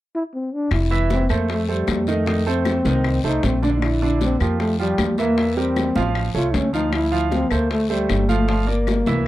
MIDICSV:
0, 0, Header, 1, 5, 480
1, 0, Start_track
1, 0, Key_signature, -1, "major"
1, 0, Tempo, 388601
1, 881, Time_signature, 4, 2, 24, 8
1, 11458, End_track
2, 0, Start_track
2, 0, Title_t, "Grand piano"
2, 0, Program_c, 0, 0
2, 1121, Note_on_c, 0, 52, 87
2, 1122, Note_on_c, 0, 64, 81
2, 1129, Note_on_c, 0, 76, 86
2, 1515, Note_off_c, 0, 52, 0
2, 1515, Note_off_c, 0, 64, 0
2, 1519, Note_off_c, 0, 76, 0
2, 1601, Note_on_c, 0, 57, 77
2, 1605, Note_on_c, 0, 69, 74
2, 1614, Note_on_c, 0, 72, 71
2, 1994, Note_off_c, 0, 57, 0
2, 1997, Note_off_c, 0, 69, 0
2, 2002, Note_off_c, 0, 72, 0
2, 2081, Note_on_c, 0, 57, 67
2, 2085, Note_on_c, 0, 69, 72
2, 2089, Note_on_c, 0, 72, 68
2, 2474, Note_off_c, 0, 57, 0
2, 2477, Note_off_c, 0, 69, 0
2, 2479, Note_off_c, 0, 72, 0
2, 2565, Note_on_c, 0, 51, 73
2, 2568, Note_on_c, 0, 63, 76
2, 2571, Note_on_c, 0, 75, 77
2, 2760, Note_off_c, 0, 51, 0
2, 2762, Note_off_c, 0, 63, 0
2, 2764, Note_off_c, 0, 75, 0
2, 2799, Note_on_c, 0, 51, 71
2, 2803, Note_on_c, 0, 63, 78
2, 2806, Note_on_c, 0, 75, 74
2, 2996, Note_off_c, 0, 51, 0
2, 2999, Note_off_c, 0, 63, 0
2, 3001, Note_off_c, 0, 75, 0
2, 3043, Note_on_c, 0, 57, 75
2, 3046, Note_on_c, 0, 69, 80
2, 3054, Note_on_c, 0, 72, 80
2, 3436, Note_off_c, 0, 57, 0
2, 3437, Note_off_c, 0, 69, 0
2, 3442, Note_off_c, 0, 72, 0
2, 3522, Note_on_c, 0, 51, 77
2, 3526, Note_on_c, 0, 63, 82
2, 3529, Note_on_c, 0, 75, 82
2, 3915, Note_off_c, 0, 51, 0
2, 3918, Note_off_c, 0, 63, 0
2, 3919, Note_off_c, 0, 75, 0
2, 4005, Note_on_c, 0, 57, 77
2, 4007, Note_on_c, 0, 69, 68
2, 4010, Note_on_c, 0, 72, 71
2, 4397, Note_off_c, 0, 57, 0
2, 4398, Note_off_c, 0, 69, 0
2, 4400, Note_off_c, 0, 72, 0
2, 4477, Note_on_c, 0, 50, 84
2, 4484, Note_on_c, 0, 62, 79
2, 4486, Note_on_c, 0, 74, 83
2, 4872, Note_off_c, 0, 50, 0
2, 4876, Note_off_c, 0, 62, 0
2, 4878, Note_off_c, 0, 74, 0
2, 4966, Note_on_c, 0, 50, 93
2, 4967, Note_on_c, 0, 62, 83
2, 4969, Note_on_c, 0, 74, 82
2, 5357, Note_off_c, 0, 50, 0
2, 5358, Note_off_c, 0, 62, 0
2, 5360, Note_off_c, 0, 74, 0
2, 5443, Note_on_c, 0, 53, 65
2, 5449, Note_on_c, 0, 65, 71
2, 5451, Note_on_c, 0, 67, 68
2, 5835, Note_off_c, 0, 53, 0
2, 5839, Note_off_c, 0, 65, 0
2, 5840, Note_off_c, 0, 67, 0
2, 5921, Note_on_c, 0, 65, 70
2, 5923, Note_on_c, 0, 53, 67
2, 5925, Note_on_c, 0, 67, 69
2, 6314, Note_off_c, 0, 65, 0
2, 6316, Note_off_c, 0, 53, 0
2, 6317, Note_off_c, 0, 67, 0
2, 6401, Note_on_c, 0, 52, 85
2, 6405, Note_on_c, 0, 64, 70
2, 6410, Note_on_c, 0, 76, 70
2, 6597, Note_off_c, 0, 52, 0
2, 6600, Note_off_c, 0, 64, 0
2, 6603, Note_off_c, 0, 76, 0
2, 6639, Note_on_c, 0, 52, 74
2, 6640, Note_on_c, 0, 64, 71
2, 6647, Note_on_c, 0, 76, 71
2, 6837, Note_off_c, 0, 52, 0
2, 6837, Note_off_c, 0, 64, 0
2, 6842, Note_off_c, 0, 76, 0
2, 6880, Note_on_c, 0, 55, 73
2, 6882, Note_on_c, 0, 67, 73
2, 6886, Note_on_c, 0, 70, 77
2, 7274, Note_off_c, 0, 55, 0
2, 7275, Note_off_c, 0, 67, 0
2, 7278, Note_off_c, 0, 70, 0
2, 7362, Note_on_c, 0, 53, 83
2, 7363, Note_on_c, 0, 65, 82
2, 7368, Note_on_c, 0, 77, 80
2, 7755, Note_off_c, 0, 53, 0
2, 7756, Note_off_c, 0, 65, 0
2, 7759, Note_off_c, 0, 77, 0
2, 7837, Note_on_c, 0, 57, 71
2, 7839, Note_on_c, 0, 69, 61
2, 7840, Note_on_c, 0, 73, 66
2, 8232, Note_off_c, 0, 57, 0
2, 8233, Note_off_c, 0, 69, 0
2, 8234, Note_off_c, 0, 73, 0
2, 8313, Note_on_c, 0, 53, 75
2, 8317, Note_on_c, 0, 65, 73
2, 8321, Note_on_c, 0, 77, 73
2, 8710, Note_off_c, 0, 53, 0
2, 8712, Note_off_c, 0, 65, 0
2, 8715, Note_off_c, 0, 77, 0
2, 8789, Note_on_c, 0, 53, 82
2, 8791, Note_on_c, 0, 65, 82
2, 8799, Note_on_c, 0, 77, 82
2, 9188, Note_off_c, 0, 53, 0
2, 9188, Note_off_c, 0, 65, 0
2, 9193, Note_off_c, 0, 77, 0
2, 9278, Note_on_c, 0, 57, 66
2, 9279, Note_on_c, 0, 69, 64
2, 9285, Note_on_c, 0, 72, 78
2, 9673, Note_off_c, 0, 57, 0
2, 9673, Note_off_c, 0, 69, 0
2, 9677, Note_off_c, 0, 72, 0
2, 9757, Note_on_c, 0, 57, 70
2, 9758, Note_on_c, 0, 69, 73
2, 9761, Note_on_c, 0, 72, 76
2, 10152, Note_off_c, 0, 57, 0
2, 10153, Note_off_c, 0, 69, 0
2, 10155, Note_off_c, 0, 72, 0
2, 10235, Note_on_c, 0, 53, 78
2, 10240, Note_on_c, 0, 65, 76
2, 10243, Note_on_c, 0, 77, 79
2, 10434, Note_off_c, 0, 53, 0
2, 10437, Note_off_c, 0, 65, 0
2, 10439, Note_off_c, 0, 77, 0
2, 10473, Note_on_c, 0, 53, 79
2, 10476, Note_on_c, 0, 65, 73
2, 10482, Note_on_c, 0, 77, 80
2, 10673, Note_off_c, 0, 53, 0
2, 10675, Note_off_c, 0, 65, 0
2, 10678, Note_off_c, 0, 77, 0
2, 10703, Note_on_c, 0, 58, 84
2, 10706, Note_on_c, 0, 70, 78
2, 10710, Note_on_c, 0, 74, 80
2, 11104, Note_off_c, 0, 58, 0
2, 11106, Note_off_c, 0, 70, 0
2, 11108, Note_off_c, 0, 74, 0
2, 11202, Note_on_c, 0, 64, 87
2, 11203, Note_on_c, 0, 52, 78
2, 11206, Note_on_c, 0, 76, 85
2, 11458, Note_off_c, 0, 52, 0
2, 11458, Note_off_c, 0, 64, 0
2, 11458, Note_off_c, 0, 76, 0
2, 11458, End_track
3, 0, Start_track
3, 0, Title_t, "Trombone"
3, 0, Program_c, 1, 57
3, 185, Note_on_c, 1, 64, 87
3, 288, Note_off_c, 1, 64, 0
3, 418, Note_on_c, 1, 60, 73
3, 668, Note_on_c, 1, 62, 83
3, 687, Note_off_c, 1, 60, 0
3, 894, Note_off_c, 1, 62, 0
3, 903, Note_on_c, 1, 64, 80
3, 1339, Note_off_c, 1, 64, 0
3, 1389, Note_on_c, 1, 60, 86
3, 1627, Note_on_c, 1, 58, 72
3, 1646, Note_off_c, 1, 60, 0
3, 1854, Note_off_c, 1, 58, 0
3, 1873, Note_on_c, 1, 57, 81
3, 2109, Note_on_c, 1, 55, 82
3, 2128, Note_off_c, 1, 57, 0
3, 2578, Note_on_c, 1, 57, 92
3, 2597, Note_off_c, 1, 55, 0
3, 3049, Note_off_c, 1, 57, 0
3, 3066, Note_on_c, 1, 60, 90
3, 4019, Note_on_c, 1, 63, 97
3, 4037, Note_off_c, 1, 60, 0
3, 4258, Note_on_c, 1, 60, 85
3, 4277, Note_off_c, 1, 63, 0
3, 4489, Note_off_c, 1, 60, 0
3, 4498, Note_on_c, 1, 62, 89
3, 4563, Note_off_c, 1, 62, 0
3, 4644, Note_on_c, 1, 63, 68
3, 4731, Note_on_c, 1, 64, 104
3, 4750, Note_off_c, 1, 63, 0
3, 5220, Note_on_c, 1, 60, 88
3, 5238, Note_off_c, 1, 64, 0
3, 5451, Note_on_c, 1, 58, 76
3, 5469, Note_off_c, 1, 60, 0
3, 5681, Note_off_c, 1, 58, 0
3, 5689, Note_on_c, 1, 57, 88
3, 5908, Note_off_c, 1, 57, 0
3, 5931, Note_on_c, 1, 55, 95
3, 6373, Note_off_c, 1, 55, 0
3, 6408, Note_on_c, 1, 58, 92
3, 6884, Note_on_c, 1, 60, 98
3, 6902, Note_off_c, 1, 58, 0
3, 7508, Note_off_c, 1, 60, 0
3, 7850, Note_on_c, 1, 65, 88
3, 8097, Note_on_c, 1, 61, 89
3, 8115, Note_off_c, 1, 65, 0
3, 8324, Note_off_c, 1, 61, 0
3, 8332, Note_on_c, 1, 63, 94
3, 8550, Note_off_c, 1, 63, 0
3, 8581, Note_on_c, 1, 64, 94
3, 9047, Note_on_c, 1, 60, 91
3, 9066, Note_off_c, 1, 64, 0
3, 9291, Note_on_c, 1, 58, 86
3, 9309, Note_off_c, 1, 60, 0
3, 9523, Note_off_c, 1, 58, 0
3, 9530, Note_on_c, 1, 57, 93
3, 9772, Note_on_c, 1, 55, 90
3, 9790, Note_off_c, 1, 57, 0
3, 10247, Note_on_c, 1, 57, 86
3, 10266, Note_off_c, 1, 55, 0
3, 10724, Note_off_c, 1, 57, 0
3, 10736, Note_on_c, 1, 58, 84
3, 11458, Note_off_c, 1, 58, 0
3, 11458, End_track
4, 0, Start_track
4, 0, Title_t, "Upright bass"
4, 0, Program_c, 2, 32
4, 879, Note_on_c, 2, 29, 90
4, 1551, Note_off_c, 2, 29, 0
4, 1604, Note_on_c, 2, 41, 95
4, 2273, Note_off_c, 2, 41, 0
4, 2321, Note_on_c, 2, 41, 84
4, 3448, Note_off_c, 2, 41, 0
4, 3517, Note_on_c, 2, 36, 93
4, 3965, Note_off_c, 2, 36, 0
4, 4001, Note_on_c, 2, 36, 73
4, 4224, Note_off_c, 2, 36, 0
4, 4246, Note_on_c, 2, 34, 94
4, 5370, Note_off_c, 2, 34, 0
4, 5442, Note_on_c, 2, 41, 91
4, 6112, Note_off_c, 2, 41, 0
4, 6155, Note_on_c, 2, 40, 90
4, 7285, Note_off_c, 2, 40, 0
4, 7359, Note_on_c, 2, 33, 89
4, 7806, Note_off_c, 2, 33, 0
4, 7838, Note_on_c, 2, 36, 74
4, 8062, Note_off_c, 2, 36, 0
4, 8081, Note_on_c, 2, 38, 95
4, 9207, Note_off_c, 2, 38, 0
4, 9276, Note_on_c, 2, 38, 91
4, 9949, Note_off_c, 2, 38, 0
4, 10000, Note_on_c, 2, 31, 91
4, 11127, Note_off_c, 2, 31, 0
4, 11198, Note_on_c, 2, 36, 91
4, 11458, Note_off_c, 2, 36, 0
4, 11458, End_track
5, 0, Start_track
5, 0, Title_t, "Drums"
5, 876, Note_on_c, 9, 75, 67
5, 878, Note_on_c, 9, 74, 72
5, 883, Note_on_c, 9, 60, 65
5, 885, Note_on_c, 9, 63, 34
5, 1000, Note_off_c, 9, 75, 0
5, 1002, Note_off_c, 9, 74, 0
5, 1007, Note_off_c, 9, 60, 0
5, 1008, Note_off_c, 9, 63, 0
5, 1123, Note_on_c, 9, 63, 35
5, 1247, Note_off_c, 9, 63, 0
5, 1360, Note_on_c, 9, 73, 62
5, 1363, Note_on_c, 9, 63, 79
5, 1367, Note_on_c, 9, 60, 61
5, 1483, Note_off_c, 9, 73, 0
5, 1487, Note_off_c, 9, 63, 0
5, 1490, Note_off_c, 9, 60, 0
5, 1598, Note_on_c, 9, 73, 59
5, 1606, Note_on_c, 9, 75, 62
5, 1722, Note_off_c, 9, 73, 0
5, 1729, Note_off_c, 9, 75, 0
5, 1835, Note_on_c, 9, 74, 67
5, 1839, Note_on_c, 9, 63, 31
5, 1849, Note_on_c, 9, 60, 60
5, 1958, Note_off_c, 9, 74, 0
5, 1963, Note_off_c, 9, 63, 0
5, 1973, Note_off_c, 9, 60, 0
5, 2080, Note_on_c, 9, 63, 33
5, 2204, Note_off_c, 9, 63, 0
5, 2313, Note_on_c, 9, 63, 87
5, 2318, Note_on_c, 9, 73, 68
5, 2320, Note_on_c, 9, 60, 66
5, 2320, Note_on_c, 9, 61, 72
5, 2322, Note_on_c, 9, 75, 70
5, 2437, Note_off_c, 9, 63, 0
5, 2442, Note_off_c, 9, 73, 0
5, 2443, Note_off_c, 9, 60, 0
5, 2443, Note_off_c, 9, 61, 0
5, 2445, Note_off_c, 9, 75, 0
5, 2556, Note_on_c, 9, 73, 69
5, 2680, Note_off_c, 9, 73, 0
5, 2794, Note_on_c, 9, 74, 71
5, 2804, Note_on_c, 9, 63, 35
5, 2809, Note_on_c, 9, 60, 71
5, 2918, Note_off_c, 9, 74, 0
5, 2927, Note_off_c, 9, 63, 0
5, 2933, Note_off_c, 9, 60, 0
5, 3044, Note_on_c, 9, 63, 32
5, 3047, Note_on_c, 9, 60, 38
5, 3167, Note_off_c, 9, 63, 0
5, 3171, Note_off_c, 9, 60, 0
5, 3276, Note_on_c, 9, 75, 65
5, 3278, Note_on_c, 9, 63, 90
5, 3278, Note_on_c, 9, 73, 68
5, 3286, Note_on_c, 9, 60, 59
5, 3400, Note_off_c, 9, 75, 0
5, 3401, Note_off_c, 9, 73, 0
5, 3402, Note_off_c, 9, 63, 0
5, 3410, Note_off_c, 9, 60, 0
5, 3523, Note_on_c, 9, 60, 34
5, 3523, Note_on_c, 9, 73, 67
5, 3526, Note_on_c, 9, 63, 94
5, 3646, Note_off_c, 9, 60, 0
5, 3646, Note_off_c, 9, 73, 0
5, 3650, Note_off_c, 9, 63, 0
5, 3759, Note_on_c, 9, 75, 63
5, 3761, Note_on_c, 9, 60, 56
5, 3763, Note_on_c, 9, 63, 33
5, 3764, Note_on_c, 9, 74, 73
5, 3882, Note_off_c, 9, 75, 0
5, 3885, Note_off_c, 9, 60, 0
5, 3886, Note_off_c, 9, 63, 0
5, 3887, Note_off_c, 9, 74, 0
5, 4006, Note_on_c, 9, 60, 29
5, 4012, Note_on_c, 9, 63, 35
5, 4129, Note_off_c, 9, 60, 0
5, 4135, Note_off_c, 9, 63, 0
5, 4239, Note_on_c, 9, 60, 58
5, 4239, Note_on_c, 9, 61, 78
5, 4241, Note_on_c, 9, 73, 68
5, 4243, Note_on_c, 9, 63, 83
5, 4363, Note_off_c, 9, 60, 0
5, 4363, Note_off_c, 9, 61, 0
5, 4364, Note_off_c, 9, 73, 0
5, 4366, Note_off_c, 9, 63, 0
5, 4480, Note_on_c, 9, 63, 87
5, 4485, Note_on_c, 9, 73, 66
5, 4604, Note_off_c, 9, 63, 0
5, 4608, Note_off_c, 9, 73, 0
5, 4722, Note_on_c, 9, 74, 67
5, 4722, Note_on_c, 9, 75, 65
5, 4723, Note_on_c, 9, 60, 70
5, 4727, Note_on_c, 9, 63, 32
5, 4845, Note_off_c, 9, 75, 0
5, 4846, Note_off_c, 9, 60, 0
5, 4846, Note_off_c, 9, 74, 0
5, 4851, Note_off_c, 9, 63, 0
5, 4966, Note_on_c, 9, 63, 32
5, 5090, Note_off_c, 9, 63, 0
5, 5199, Note_on_c, 9, 73, 66
5, 5202, Note_on_c, 9, 60, 61
5, 5205, Note_on_c, 9, 63, 85
5, 5322, Note_off_c, 9, 73, 0
5, 5326, Note_off_c, 9, 60, 0
5, 5329, Note_off_c, 9, 63, 0
5, 5439, Note_on_c, 9, 73, 67
5, 5442, Note_on_c, 9, 75, 67
5, 5562, Note_off_c, 9, 73, 0
5, 5566, Note_off_c, 9, 75, 0
5, 5680, Note_on_c, 9, 74, 68
5, 5682, Note_on_c, 9, 60, 62
5, 5690, Note_on_c, 9, 63, 32
5, 5803, Note_off_c, 9, 74, 0
5, 5805, Note_off_c, 9, 60, 0
5, 5813, Note_off_c, 9, 63, 0
5, 5926, Note_on_c, 9, 63, 35
5, 6049, Note_off_c, 9, 63, 0
5, 6155, Note_on_c, 9, 60, 53
5, 6155, Note_on_c, 9, 61, 74
5, 6160, Note_on_c, 9, 73, 68
5, 6162, Note_on_c, 9, 63, 84
5, 6165, Note_on_c, 9, 75, 70
5, 6278, Note_off_c, 9, 60, 0
5, 6278, Note_off_c, 9, 61, 0
5, 6283, Note_off_c, 9, 73, 0
5, 6286, Note_off_c, 9, 63, 0
5, 6288, Note_off_c, 9, 75, 0
5, 6394, Note_on_c, 9, 63, 72
5, 6400, Note_on_c, 9, 73, 68
5, 6518, Note_off_c, 9, 63, 0
5, 6523, Note_off_c, 9, 73, 0
5, 6641, Note_on_c, 9, 74, 73
5, 6642, Note_on_c, 9, 60, 66
5, 6764, Note_off_c, 9, 74, 0
5, 6766, Note_off_c, 9, 60, 0
5, 6881, Note_on_c, 9, 63, 29
5, 6886, Note_on_c, 9, 60, 38
5, 7005, Note_off_c, 9, 63, 0
5, 7009, Note_off_c, 9, 60, 0
5, 7119, Note_on_c, 9, 63, 83
5, 7122, Note_on_c, 9, 73, 61
5, 7123, Note_on_c, 9, 75, 64
5, 7124, Note_on_c, 9, 60, 57
5, 7243, Note_off_c, 9, 63, 0
5, 7245, Note_off_c, 9, 73, 0
5, 7246, Note_off_c, 9, 75, 0
5, 7248, Note_off_c, 9, 60, 0
5, 7356, Note_on_c, 9, 63, 94
5, 7360, Note_on_c, 9, 73, 64
5, 7367, Note_on_c, 9, 60, 30
5, 7479, Note_off_c, 9, 63, 0
5, 7484, Note_off_c, 9, 73, 0
5, 7491, Note_off_c, 9, 60, 0
5, 7599, Note_on_c, 9, 75, 67
5, 7601, Note_on_c, 9, 60, 50
5, 7601, Note_on_c, 9, 63, 35
5, 7602, Note_on_c, 9, 74, 70
5, 7722, Note_off_c, 9, 75, 0
5, 7724, Note_off_c, 9, 63, 0
5, 7725, Note_off_c, 9, 60, 0
5, 7726, Note_off_c, 9, 74, 0
5, 7837, Note_on_c, 9, 63, 33
5, 7844, Note_on_c, 9, 60, 29
5, 7960, Note_off_c, 9, 63, 0
5, 7967, Note_off_c, 9, 60, 0
5, 8078, Note_on_c, 9, 63, 76
5, 8078, Note_on_c, 9, 73, 67
5, 8080, Note_on_c, 9, 60, 58
5, 8080, Note_on_c, 9, 61, 75
5, 8201, Note_off_c, 9, 63, 0
5, 8202, Note_off_c, 9, 73, 0
5, 8203, Note_off_c, 9, 60, 0
5, 8203, Note_off_c, 9, 61, 0
5, 8319, Note_on_c, 9, 63, 73
5, 8323, Note_on_c, 9, 73, 66
5, 8442, Note_off_c, 9, 63, 0
5, 8446, Note_off_c, 9, 73, 0
5, 8555, Note_on_c, 9, 60, 67
5, 8555, Note_on_c, 9, 75, 65
5, 8561, Note_on_c, 9, 74, 76
5, 8564, Note_on_c, 9, 63, 33
5, 8678, Note_off_c, 9, 60, 0
5, 8679, Note_off_c, 9, 75, 0
5, 8685, Note_off_c, 9, 74, 0
5, 8688, Note_off_c, 9, 63, 0
5, 9035, Note_on_c, 9, 73, 58
5, 9038, Note_on_c, 9, 60, 58
5, 9044, Note_on_c, 9, 63, 86
5, 9159, Note_off_c, 9, 73, 0
5, 9162, Note_off_c, 9, 60, 0
5, 9167, Note_off_c, 9, 63, 0
5, 9271, Note_on_c, 9, 75, 65
5, 9276, Note_on_c, 9, 73, 65
5, 9395, Note_off_c, 9, 75, 0
5, 9400, Note_off_c, 9, 73, 0
5, 9520, Note_on_c, 9, 60, 60
5, 9520, Note_on_c, 9, 74, 68
5, 9525, Note_on_c, 9, 63, 35
5, 9643, Note_off_c, 9, 74, 0
5, 9644, Note_off_c, 9, 60, 0
5, 9649, Note_off_c, 9, 63, 0
5, 9767, Note_on_c, 9, 63, 34
5, 9891, Note_off_c, 9, 63, 0
5, 9996, Note_on_c, 9, 75, 67
5, 10000, Note_on_c, 9, 60, 62
5, 10000, Note_on_c, 9, 61, 64
5, 10001, Note_on_c, 9, 73, 65
5, 10007, Note_on_c, 9, 63, 79
5, 10120, Note_off_c, 9, 75, 0
5, 10124, Note_off_c, 9, 60, 0
5, 10124, Note_off_c, 9, 61, 0
5, 10124, Note_off_c, 9, 73, 0
5, 10130, Note_off_c, 9, 63, 0
5, 10241, Note_on_c, 9, 73, 71
5, 10244, Note_on_c, 9, 63, 76
5, 10365, Note_off_c, 9, 73, 0
5, 10367, Note_off_c, 9, 63, 0
5, 10475, Note_on_c, 9, 74, 64
5, 10482, Note_on_c, 9, 60, 66
5, 10484, Note_on_c, 9, 63, 33
5, 10599, Note_off_c, 9, 74, 0
5, 10606, Note_off_c, 9, 60, 0
5, 10607, Note_off_c, 9, 63, 0
5, 10728, Note_on_c, 9, 60, 36
5, 10728, Note_on_c, 9, 63, 33
5, 10851, Note_off_c, 9, 60, 0
5, 10851, Note_off_c, 9, 63, 0
5, 10957, Note_on_c, 9, 75, 60
5, 10958, Note_on_c, 9, 73, 70
5, 10963, Note_on_c, 9, 63, 84
5, 10969, Note_on_c, 9, 60, 66
5, 11081, Note_off_c, 9, 73, 0
5, 11081, Note_off_c, 9, 75, 0
5, 11087, Note_off_c, 9, 63, 0
5, 11093, Note_off_c, 9, 60, 0
5, 11195, Note_on_c, 9, 73, 62
5, 11201, Note_on_c, 9, 60, 32
5, 11204, Note_on_c, 9, 63, 93
5, 11319, Note_off_c, 9, 73, 0
5, 11324, Note_off_c, 9, 60, 0
5, 11328, Note_off_c, 9, 63, 0
5, 11458, End_track
0, 0, End_of_file